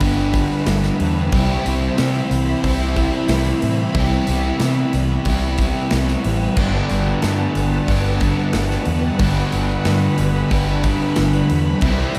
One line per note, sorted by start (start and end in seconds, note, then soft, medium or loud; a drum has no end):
0.00 0.45 G1 medium
0.00 0.66 G2 medium
0.00 1.30 G2 medium
0.00 0.36 D3 medium
0.00 1.31 D3 medium
0.00 0.34 G3 medium
0.00 1.34 G3 medium
0.00 1.34 B3 medium
0.00 1.32 D4 medium
0.00 1.29 B4 medium
0.00 1.29 B5 medium
0.00 kick medium
0.00 open hi-hat medium
0.05 1.36 G4 medium
0.19 tambourine soft
0.33 0.67 D3 medium
0.33 0.68 G3 medium
0.33 kick medium
0.33 open hi-hat medium
0.33 tambourine medium
0.52 tambourine soft
0.66 0.89 G1 loud
0.66 1.31 G2 medium
0.66 1.01 D3 medium
0.66 0.99 G3 medium
0.66 snare loud
0.66 open hi-hat medium
0.66 tambourine loud
0.84 snare soft
0.84 tambourine medium
1.00 1.34 E2 medium
1.00 1.31 D3 medium
1.00 1.33 G3 medium
1.00 open hi-hat medium
1.32 1.55 C2 loud
1.32 1.98 C3 medium
1.32 2.64 C3 medium
1.32 1.66 G3 loud
1.32 2.65 G3 medium
1.32 2.66 C4 medium
1.32 1.64 C4 medium
1.32 6.54 E4 medium
1.32 3.92 C5 medium
1.32 6.54 B5 medium
1.32 kick loud
1.32 open hi-hat medium
1.32 tambourine soft
1.36 2.67 E4 medium
1.36 2.68 G4 loud
1.49 tambourine soft
1.65 1.88 C2 loud
1.65 1.99 G3 medium
1.65 2.00 C4 medium
1.65 open hi-hat medium
1.65 tambourine medium
1.82 tambourine soft
1.98 3.29 C3 medium
1.98 2.21 C3 medium
1.98 2.99 G3 medium
1.98 2.96 C4 medium
1.98 snare loud
1.98 open hi-hat medium
1.98 tambourine loud
2.16 tambourine soft
2.31 2.53 C2 medium
2.31 open hi-hat medium
2.31 tambourine medium
2.48 tambourine soft
2.64 3.08 C2 medium
2.64 3.94 C3 medium
2.64 3.97 G3 medium
2.64 3.94 C4 medium
2.64 3.95 E4 medium
2.64 kick medium
2.64 open hi-hat medium
2.68 3.99 G4 medium
2.80 tambourine soft
2.96 3.31 G3 medium
2.96 3.31 C4 medium
2.96 kick medium
2.96 open hi-hat medium
2.96 tambourine medium
3.13 tambourine soft
3.28 3.51 C2 loud
3.28 3.95 C3 medium
3.28 3.66 G3 medium
3.28 3.62 C4 medium
3.28 snare loud
3.28 open hi-hat medium
3.28 tambourine medium
3.45 tambourine medium
3.62 3.85 A2 medium
3.62 3.96 G3 medium
3.62 3.96 C4 medium
3.62 open hi-hat medium
3.95 4.17 C2 loud
3.95 4.59 C3 medium
3.95 5.25 C3 medium
3.95 4.30 G3 medium
3.95 5.27 G3 loud
3.95 4.28 C4 loud
3.95 5.26 C4 medium
3.95 11.79 B4 medium
3.95 kick loud
3.95 open hi-hat medium
3.95 tambourine soft
3.99 5.26 E4 medium
3.99 5.30 G4 loud
4.11 tambourine soft
4.27 4.50 C2 loud
4.27 4.62 G3 medium
4.27 4.62 C4 medium
4.27 open hi-hat medium
4.27 tambourine medium
4.45 tambourine soft
4.60 4.82 C3 loud
4.60 5.91 C3 medium
4.60 5.61 G3 medium
4.60 5.58 C4 medium
4.60 snare loud
4.60 open hi-hat medium
4.60 tambourine medium
4.93 5.16 C2 medium
4.93 open hi-hat medium
4.93 tambourine medium
5.11 tambourine soft
5.25 5.70 C2 medium
5.25 6.56 C3 medium
5.25 6.58 G3 medium
5.25 6.57 C4 medium
5.25 kick medium
5.25 open hi-hat medium
5.25 tambourine soft
5.29 6.57 E4 medium
5.29 6.61 G4 medium
5.44 tambourine soft
5.58 5.93 G3 medium
5.58 5.93 C4 medium
5.58 kick medium
5.58 open hi-hat medium
5.58 tambourine medium
5.78 tambourine soft
5.91 6.14 C2 medium
5.91 6.56 C3 medium
5.91 6.28 G3 medium
5.91 6.24 C4 medium
5.91 snare loud
5.91 open hi-hat medium
5.91 tambourine loud
6.08 snare soft
6.08 tambourine medium
6.24 6.47 A1 medium
6.24 6.59 G3 medium
6.24 6.56 C4 medium
6.24 open hi-hat medium
6.24 tambourine soft
6.42 tambourine soft
6.56 6.79 G1 loud
6.56 7.87 G2 medium
6.56 7.23 G2 medium
6.56 7.87 D3 medium
6.56 6.91 D3 medium
6.56 7.89 G3 medium
6.56 6.90 G3 loud
6.56 7.90 B3 medium
6.56 7.90 D4 loud
6.56 11.78 F#5 medium
6.56 9.17 A5 medium
6.56 kick loud
6.56 crash loud
6.56 tambourine soft
6.61 7.91 G4 medium
6.75 tambourine soft
6.90 7.12 G1 medium
6.90 7.24 D3 medium
6.90 7.25 G3 medium
6.90 open hi-hat medium
6.90 tambourine medium
7.08 tambourine soft
7.22 7.45 G2 loud
7.22 8.54 G2 medium
7.22 8.24 D3 medium
7.22 8.21 G3 medium
7.22 snare medium
7.22 open hi-hat medium
7.22 tambourine medium
7.41 tambourine soft
7.55 7.78 G1 medium
7.55 open hi-hat medium
7.55 tambourine medium
7.73 tambourine soft
7.87 8.32 G1 medium
7.87 9.17 G2 medium
7.87 9.18 D3 medium
7.87 9.21 G3 medium
7.87 9.21 B3 medium
7.87 9.19 D4 medium
7.87 kick medium
7.87 open hi-hat medium
7.91 9.23 G4 medium
8.07 tambourine soft
8.21 8.57 G3 medium
8.21 kick medium
8.21 open hi-hat medium
8.21 tambourine medium
8.25 8.56 D3 medium
8.39 tambourine soft
8.53 8.76 G1 medium
8.53 9.20 G2 medium
8.53 8.90 D3 medium
8.53 snare loud
8.53 open hi-hat medium
8.53 tambourine medium
8.58 8.88 G3 medium
8.70 snare soft
8.70 tambourine medium
8.85 9.09 E2 medium
8.85 9.24 G3 medium
8.85 open hi-hat medium
8.91 9.22 D3 medium
9.19 9.42 G1 medium
9.19 10.48 G2 medium
9.19 9.85 G2 medium
9.19 10.49 D3 medium
9.19 9.56 D3 medium
9.19 10.51 G3 medium
9.19 10.51 B3 medium
9.19 10.51 D4 loud
9.19 10.53 G4 loud
9.19 12.19 B5 medium
9.19 kick loud
9.19 open hi-hat medium
9.19 tambourine soft
9.24 9.54 G3 loud
9.37 tambourine soft
9.52 9.75 G1 loud
9.52 9.89 G3 medium
9.52 open hi-hat medium
9.52 tambourine medium
9.57 9.87 D3 medium
9.69 tambourine soft
9.85 10.07 G2 medium
9.85 11.16 G2 medium
9.85 10.86 D3 medium
9.85 snare loud
9.85 open hi-hat medium
9.85 tambourine medium
9.89 10.85 G3 medium
10.02 tambourine soft
10.18 10.41 G1 medium
10.18 open hi-hat medium
10.18 tambourine medium
10.35 tambourine soft
10.50 10.95 G1 medium
10.50 11.80 G2 medium
10.50 11.80 D3 medium
10.50 11.83 G3 medium
10.50 11.84 B3 medium
10.50 11.81 D4 medium
10.50 kick medium
10.50 open hi-hat medium
10.54 11.86 G4 medium
10.84 11.17 D3 medium
10.84 11.19 G3 medium
10.84 kick medium
10.84 open hi-hat medium
10.84 tambourine medium
11.00 tambourine soft
11.16 11.40 G1 loud
11.16 11.81 G2 medium
11.16 11.52 D3 medium
11.16 11.50 G3 medium
11.16 snare loud
11.16 open hi-hat medium
11.16 tambourine loud
11.33 tambourine medium
11.50 11.73 E2 medium
11.50 11.83 D3 medium
11.50 11.84 G3 medium
11.50 open hi-hat medium
11.81 12.04 C2 loud
11.81 12.19 C3 medium
11.81 12.19 G3 medium
11.81 12.18 G3 loud
11.81 12.19 C4 loud
11.81 12.19 E4 medium
11.81 12.19 C5 medium
11.81 kick loud
11.81 open hi-hat medium
11.81 tambourine soft
11.85 12.16 C4 loud
11.85 12.19 E4 medium
11.85 12.19 G4 medium
11.99 tambourine soft
12.15 open hi-hat medium
12.15 tambourine medium